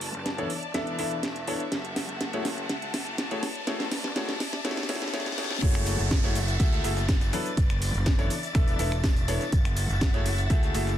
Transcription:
Already playing: fingered electric bass F#1, violin section B4 D5 A5, riser
0.01 open hi-hat
0.14 fingered electric bass F#1, closed hi-hat
0.26 snare, closed hi-hat
0.38 grand piano E3 B3 D4 E4 A4 C#5, closed hi-hat
0.50 violin section E5, open hi-hat
0.63 closed hi-hat
0.74 fingered electric bass E1, grand piano E3 B3 D4 E4 A4 E5, snare, closed hi-hat
0.87 closed hi-hat
0.99 fingered electric bass E1, grand piano E3 B3 D4 E4 A4 E5, open hi-hat
1.11 closed hi-hat
1.23 snare, closed hi-hat
1.36 closed hi-hat
1.47 grand piano B3 D4 E4 A4 C#5, open hi-hat
1.60 closed hi-hat
1.72 fingered electric bass F#1, violin section F#5 A5, snare, closed hi-hat
1.85 closed hi-hat
1.96 snare, open hi-hat
2.09 fingered electric bass F#1, closed hi-hat
2.21 snare, closed hi-hat
2.33 grand piano A3 E4 F#4 G#4 C#5, closed hi-hat
2.45 snare, open hi-hat
2.58 closed hi-hat
2.69 fingered electric bass C#2, snare, closed hi-hat
2.82 closed hi-hat
2.94 fingered electric bass F#1, snare, open hi-hat
3.07 closed hi-hat
3.18 snare, closed hi-hat
3.31 grand piano A3 E4 F#4 G#4 C#5, closed hi-hat
3.43 violin section B4 D5, snare, open hi-hat
3.55 closed hi-hat
3.67 fingered electric bass F#1, grand piano A3 E4 F#4 G#4 C#5, snare, closed hi-hat
3.80 snare, closed hi-hat
3.92 snare, open hi-hat
4.04 fingered electric bass F#1, snare
4.16 grand piano A3 E4 F#4 G#4 C#5, snare, closed hi-hat
4.29 snare, closed hi-hat
4.40 violin section E5, snare, open hi-hat
4.53 snare, closed hi-hat
4.65 grand piano A3 E4 F#4 G#4 C#5, snare, closed hi-hat, reverse cymbal
4.71 snare
4.77 snare, closed hi-hat
4.83 snare
4.89 fingered electric bass E2, grand piano A3 E4 F#4 G#4 C#5, snare, open hi-hat
4.95 snare
5.02 snare
5.08 snare
5.13 grand piano A3 E4 F#4 G#4 C#5, snare, closed hi-hat
5.20 snare
5.26 snare, closed hi-hat
5.32 snare
5.38 grand piano A3 E4 F#4 G#4 C#5, snare, open hi-hat
5.44 snare
5.51 snare, closed hi-hat
5.56 snare
5.62 fingered electric bass F#1, grand piano A3 E4 F#4 G#4 C#5, violin section E5 F#5 A6, kick, closed hi-hat, tambourine, downlifter, shaker
5.75 finger snap, closed hi-hat, shaker
5.86 closed hi-hat, open hi-hat, tambourine, shaker
5.98 fingered electric bass F#1, closed hi-hat, tambourine, shaker
6.11 kick, snare, closed hi-hat, tambourine, shaker
6.24 grand piano A3 E4 F#4 G#4 C#5, closed hi-hat, tambourine
6.35 closed hi-hat, open hi-hat, tambourine, shaker
6.48 closed hi-hat, tambourine, shaker
6.60 fingered electric bass C#2, grand piano A3 E4 F#4 G#4 E5, kick, closed hi-hat, tambourine, shaker
6.72 snare, closed hi-hat, shaker
6.84 fingered electric bass F#1, grand piano A3 E4 F#4 G#4 E5, snare, closed hi-hat, open hi-hat, tambourine, shaker
6.97 snare, closed hi-hat, tambourine, shaker
7.09 kick, snare, closed hi-hat, tambourine, shaker
7.21 snare, closed hi-hat, tambourine, shaker
7.33 grand piano F#3 B3 D4 E4 A4 B4, violin section B4 D5, closed hi-hat, open hi-hat, tambourine, shaker
7.45 closed hi-hat, tambourine, shaker
7.57 fingered electric bass F#1, kick, closed hi-hat, tambourine, shaker
7.70 finger snap, closed hi-hat, shaker
7.82 open hi-hat, tambourine, shaker
7.94 fingered electric bass F#1, closed hi-hat, tambourine, shaker
8.06 kick, snare, closed hi-hat, tambourine, shaker
8.19 grand piano E3 B3 D4 E4 A4 C#5, closed hi-hat, tambourine
8.30 violin section E5, closed hi-hat, open hi-hat, tambourine, shaker
8.43 closed hi-hat, tambourine, shaker
8.55 fingered electric bass E1, grand piano E3 B3 D4 E4 A4 E5, finger snap, kick, closed hi-hat, tambourine, shaker
8.68 closed hi-hat, tambourine, shaker
8.79 fingered electric bass E1, grand piano E3 B3 D4 E4 A4 E5, closed hi-hat, open hi-hat, tambourine, shaker
8.92 finger snap, shaker
9.04 kick, snare, closed hi-hat, tambourine, shaker
9.16 closed hi-hat, tambourine, shaker
9.28 grand piano B3 D4 E4 A4 C#5, closed hi-hat, open hi-hat, tambourine, shaker
9.41 snare, closed hi-hat, tambourine, shaker
9.52 fingered electric bass F#1, violin section E5 F#5, kick, closed hi-hat, tambourine, shaker
9.65 finger snap, closed hi-hat, shaker
9.77 closed hi-hat, open hi-hat, tambourine, shaker
9.90 fingered electric bass F#1, closed hi-hat, tambourine, shaker
10.01 kick, snare, closed hi-hat, tambourine, shaker
10.14 grand piano A3 E4 F#4 G#4 C#5, closed hi-hat, tambourine
10.26 closed hi-hat, open hi-hat, tambourine, shaker
10.38 closed hi-hat, tambourine, shaker
10.50 fingered electric bass C#2, grand piano A3 E4 F#4 G#4 E5, kick, closed hi-hat, tambourine, shaker
10.63 snare, closed hi-hat, shaker
10.74 fingered electric bass F#1, grand piano A3 E4 F#4 G#4 E5, snare, closed hi-hat, open hi-hat, tambourine, shaker
10.87 snare, tambourine, shaker

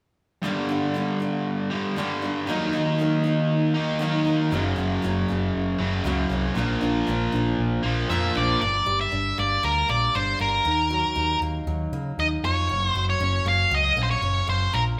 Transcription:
0.43 steel-string acoustic guitar G2 D3 G3 A#3 D4
0.69 steel-string acoustic guitar G3 A#3 D4
0.94 steel-string acoustic guitar D3 G3 A#3 D4
1.20 steel-string acoustic guitar G3 A#3 D4
1.70 overdriven electric guitar G2 D3 G3
1.96 steel-string acoustic guitar G2 D3 G3 A#3 D4
2.22 steel-string acoustic guitar G3 A#3 D4
2.47 steel-string acoustic guitar D#3 F#3 A#3 D#4
2.73 steel-string acoustic guitar F#3 A#3 D#4
2.98 steel-string acoustic guitar D#3 F#3 A#3 D#4
3.24 steel-string acoustic guitar F#3 A#3 D#4
3.74 overdriven electric guitar D#3 A#3 D#4
3.99 steel-string acoustic guitar D#3 F#3 A#3 D#4
4.25 steel-string acoustic guitar F#3 A#3 D#4
4.51 picked electric bass F#1, steel-string acoustic guitar F#2 C#3 F#3 A#3 C#4
4.76 picked electric bass F#1, steel-string acoustic guitar F#3 A#3 C#4
5.02 picked electric bass F#1, steel-string acoustic guitar C#3 F#3 A#3 C#4
5.28 picked electric bass F#1, steel-string acoustic guitar F#3 A#3 C#4
5.55 picked electric bass F#1
5.79 picked electric bass F#1, overdriven electric guitar F#2 C#3 F#3
6.04 picked electric bass C#2, steel-string acoustic guitar F#2 C#3 F#3 A#3 C#4
6.30 picked electric bass C2, steel-string acoustic guitar F#3 A#3 C#4
6.55 picked electric bass A#1, steel-string acoustic guitar A#2 F3 A#3 D4
6.81 picked electric bass A#1, steel-string acoustic guitar F3 A#3 D4
7.07 picked electric bass A#1, steel-string acoustic guitar A#2 F3 A#3 D4
7.32 picked electric bass A#1, steel-string acoustic guitar F3 A#3 D4
7.58 picked electric bass A#1
7.83 picked electric bass A#1, overdriven electric guitar A#2 F3 A#3
8.09 picked electric bass F2, steel-string acoustic guitar A#2 F3 A#3 D4, lead electric guitar E5
8.35 picked electric bass A#1, steel-string acoustic guitar F3 A#3 D4, lead electric guitar D5
8.61 picked electric bass G1, steel-string acoustic guitar G2, lead electric guitar D5
8.86 picked electric bass G1, steel-string acoustic guitar G3
9.01 lead electric guitar E5
9.12 picked electric bass G1, steel-string acoustic guitar D4
9.38 picked electric bass G1, steel-string acoustic guitar A#3, lead electric guitar D5
9.63 picked electric bass D2, steel-string acoustic guitar G3, lead electric guitar A#4
9.89 picked electric bass A#1, steel-string acoustic guitar A#3, lead electric guitar D5
10.15 picked electric bass G1, steel-string acoustic guitar D4, lead electric guitar C5
10.39 picked electric bass G1, steel-string acoustic guitar A#3, lead electric guitar A#4
10.65 picked electric bass D#2, steel-string acoustic guitar D#3
10.90 steel-string acoustic guitar F#3
11.16 picked electric bass D#2, steel-string acoustic guitar D#4
11.41 picked electric bass D#2, steel-string acoustic guitar A#3
11.67 picked electric bass D#2, steel-string acoustic guitar F#3
11.92 picked electric bass C#3, steel-string acoustic guitar A#3
12.18 picked electric bass D#2, steel-string acoustic guitar D#4, lead electric guitar D#5
12.44 picked electric bass F2, steel-string acoustic guitar A#3, lead electric guitar C#5
12.69 picked electric bass F#1, steel-string acoustic guitar F#2
12.87 lead electric guitar C5
12.95 picked electric bass F#1, steel-string acoustic guitar F#3
13.10 lead electric guitar C#5
13.20 picked electric bass F#1, steel-string acoustic guitar C#4
13.45 picked electric bass F#1, steel-string acoustic guitar A#3, lead electric guitar F5
13.71 picked electric bass C#2, steel-string acoustic guitar F#3, lead electric guitar D#5
13.96 picked electric bass A#1, steel-string acoustic guitar A#3
14.03 lead electric guitar C5
14.11 lead electric guitar C#5
14.22 picked electric bass F#1, steel-string acoustic guitar C#4
14.48 picked electric bass F#1, steel-string acoustic guitar A#3, lead electric guitar C5
14.73 picked electric bass A#1, steel-string acoustic guitar A#2, lead electric guitar A#4

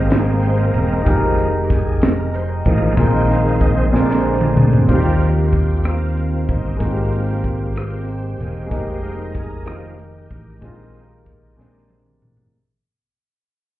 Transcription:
Already playing: fingered electric bass G#1, grand piano G#2 C4 G4 G#4 A#4, tonewheel organ G#3 A#3 C4 A#4, analog synth pad C5 D#5 G5 A#5
0.10 tonewheel organ G#4, snare, closed hi-hat
0.42 tonewheel organ C5, closed hi-hat
0.58 tonewheel organ A#4
0.74 fingered electric bass E1, closed hi-hat
1.02 fingered electric bass F1, tonewheel organ D#3 F3 G#3, grand piano D#4 G4
1.06 tonewheel organ A#3, grand piano G#4 A#4, analog synth pad D#5, kick, closed hi-hat
1.38 closed hi-hat
1.64 tonewheel organ G4
1.70 tonewheel organ G#4, kick, snare, closed hi-hat
2.02 tonewheel organ A#4, snare, closed hi-hat
2.34 tonewheel organ C5, closed hi-hat
2.65 fingered electric bass A1, tonewheel organ D#3 F3 G#3 A#3 D#5, kick, closed hi-hat
2.96 fingered electric bass A#1, grand piano A#2 D#4 F4 G#4, tonewheel organ D#3 G#3 C4 G5, analog synth pad F5, kick, closed hi-hat
3.00 grand piano A#4
3.29 tonewheel organ F5, snare, closed hi-hat
3.61 tonewheel organ D#5, kick, closed hi-hat
3.77 tonewheel organ C5
3.91 fingered electric bass A#1, grand piano A#2 C4 D4 G#4 A#4, tonewheel organ D3 G#3 C4 D5, analog synth pad C5 D5 G#5, snare
4.10 snare
4.17 tonewheel organ C5
4.24 tonewheel organ A#4
4.41 mid tom
4.56 fingered electric bass D2, mid tom
4.73 floor tom
4.85 fingered electric bass D#2, tonewheel organ F3 G3 C4 F4 G4 A#4, grand piano C4 D#4
4.89 grand piano D#3 F4, kick, crash
4.93 grand piano G4
5.21 closed hi-hat
5.52 tonewheel organ G4, kick, cross-stick, closed hi-hat
5.84 tonewheel organ A#3 C4 F4, cross-stick, closed hi-hat
6.17 closed hi-hat
6.48 fingered electric bass G1, tonewheel organ D#4, kick, closed hi-hat
6.77 fingered electric bass G#1, grand piano G#2 G#3 A#3, kick, closed hi-hat
6.81 tonewheel organ A#3 C4 F4 G4, grand piano C4 F#4
6.91 grand piano G4
7.13 cross-stick, closed hi-hat
7.44 kick, closed hi-hat
7.76 cross-stick, closed hi-hat
8.08 closed hi-hat
8.39 fingered electric bass E1, tonewheel organ G#3 A#3 C4, closed hi-hat
8.66 grand piano G#3 A#3
8.71 fingered electric bass F1, tonewheel organ G#3 A#3 D#4 G4 A#4 C5, grand piano D#4 G4, kick, closed hi-hat
9.04 closed hi-hat
9.34 tonewheel organ G#4, kick, closed hi-hat
9.64 tonewheel organ D#3 F3 G#3 A#3 D#4 G4 A#4, cross-stick, closed hi-hat
9.99 closed hi-hat
10.30 fingered electric bass A1, kick, closed hi-hat
10.61 fingered electric bass A#1, grand piano A#2 G#3 A#3 D4 F4, tonewheel organ G#3 C4 D#4, kick, closed hi-hat
10.70 grand piano D#4
10.94 cross-stick, closed hi-hat
11.26 kick, closed hi-hat
11.56 fingered electric bass A#1, grand piano C3 G#3 A#3 C4, tonewheel organ G#3 C4 D4, snare
11.60 grand piano D4
11.90 high tom
12.06 mid tom
12.22 fingered electric bass A1, mid tom
12.37 floor tom

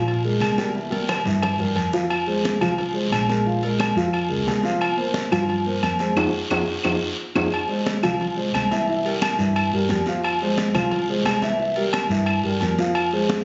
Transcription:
Already playing: fingered electric bass A#2, upright piano F3 F4 F5
0.08 high conga, low agogo, long guiro
0.24 upright piano G#3 G#4 A#4, high conga
0.40 fingered electric bass C2, high conga, low agogo, short guiro, claves
0.58 upright piano G3 G4 A#4, high conga, low agogo, short guiro
0.75 upright piano E3 E4 E5, high conga, long guiro
0.90 upright piano G3 G4 A#4, high conga, low agogo
1.09 low conga, low agogo, short guiro, claves
1.25 fingered electric bass G2, upright piano E3 E4 E5, high conga, short guiro
1.42 low conga, low agogo, long guiro, claves
1.59 fingered electric bass G2, upright piano G3 G4 A#4, low conga
1.75 fingered electric bass F2, low conga, low agogo, short guiro
1.93 upright piano F3 F4 F5, low conga, short guiro
2.10 high conga, low agogo, long guiro, claves
2.27 upright piano G#3 G#4 C5, high conga
2.44 high conga, low agogo, short guiro
2.61 fingered electric bass C2, upright piano F3 F4 F5, high conga, low conga, low agogo, short guiro, claves
2.78 high conga, low conga, low agogo, long guiro
2.93 upright piano G#3 G#4 C5, high conga
3.12 fingered electric bass A#1, high conga, low agogo, short guiro, claves
3.29 upright piano G#3 G#4 A#4, high conga, low agogo, short guiro
3.46 upright piano F3 F4 F5, high conga, long guiro
3.63 upright piano G#3 G#4 A#4, high conga, low agogo
3.79 high conga, low agogo, short guiro, claves
3.96 fingered electric bass F2, upright piano F3 F4 F5, high conga, short guiro
4.13 high conga, low agogo, long guiro, claves
4.29 fingered electric bass C#2, upright piano G#3 G#4 A#4, high conga
4.47 fingered electric bass C2, high conga, low timbale, low agogo, short guiro
4.63 upright piano F3 F4 F5, high conga, short guiro
4.80 high conga, low agogo, long guiro, claves
4.97 upright piano A#3 A#4 C5, high conga
5.14 high conga, low agogo, short guiro
5.31 fingered electric bass G2, upright piano F3 F4 F5, high conga, low conga, low agogo, short guiro, claves
5.49 high conga, low conga, low agogo, long guiro
5.66 upright piano A#3 A#4 C5, high conga
5.83 fingered electric bass F2, high conga, low agogo, short guiro, claves
5.99 upright piano G#3 G#4 C5, high conga, low agogo, short guiro
6.16 fingered electric bass F2, upright piano D#4 F4 G#4, high conga, high timbale, long guiro, claves
6.50 fingered electric bass F2, upright piano D#4 F4 G#4, high conga, high timbale, long guiro, claves
6.84 fingered electric bass F2, upright piano D#4 F4 G#4, high conga, high timbale, long guiro, claves
7.35 fingered electric bass F2, upright piano D#4 F4 G#4, high conga, high timbale, long guiro, claves
7.52 high conga, low agogo, long guiro, claves
7.68 upright piano G#3 G#4 C5, high conga
7.86 high conga, low agogo, short guiro
8.03 fingered electric bass C2, upright piano F3 F4 F5, high conga, low conga, low agogo, short guiro, claves
8.20 high conga, low conga, low agogo, long guiro
8.36 upright piano G#3 G#4 C5, high conga
8.54 fingered electric bass C2, high conga, low agogo, short guiro, claves
8.71 upright piano E3 E4 E5, high conga, low agogo, short guiro
8.88 upright piano E3 E4 E5, high conga, long guiro
9.05 upright piano G3 G4 A#4, high conga, low agogo
9.22 high conga, low agogo, short guiro, claves
9.38 fingered electric bass G2, upright piano E3 E4 E5, short guiro
9.56 high conga, low agogo, long guiro, claves
9.72 fingered electric bass G2, upright piano G3 G4 A#4, high conga
9.89 fingered electric bass F2, upright piano G3 G4, high conga, low agogo, short guiro
10.06 upright piano F3 F4 F5, high conga, short guiro
10.24 high conga, low agogo, long guiro, claves
10.41 upright piano G#3 G#4 C5, high conga
10.58 high conga, low agogo, short guiro
10.74 fingered electric bass C2, upright piano F3 F4 F5, high conga, low conga, low agogo, short guiro, claves
10.91 high conga, low conga, low agogo, long guiro
11.08 upright piano G#3 G#4 C5, high conga
11.25 fingered electric bass C2, high conga, low timbale, low agogo, short guiro, claves
11.42 upright piano E3 E4 E5, high conga, low agogo, short guiro
11.59 upright piano E3 E4 E5, high conga, long guiro
11.76 upright piano G3 G4 A#4, high conga, low agogo
11.93 high conga, low agogo, short guiro, claves
12.09 fingered electric bass G2, upright piano E3 E4 E5, high conga, short guiro
12.26 high conga, low agogo, long guiro, claves
12.44 fingered electric bass G2, upright piano G3 G4 A#4, high conga
12.61 fingered electric bass F2, upright piano G3 G4 A#4, high conga, low agogo, short guiro
12.79 upright piano F3 F4 F5, high conga, short guiro
12.95 high conga, low agogo, long guiro, claves
13.13 upright piano G#3 G#4 C5, high conga
13.29 high conga, low agogo, short guiro

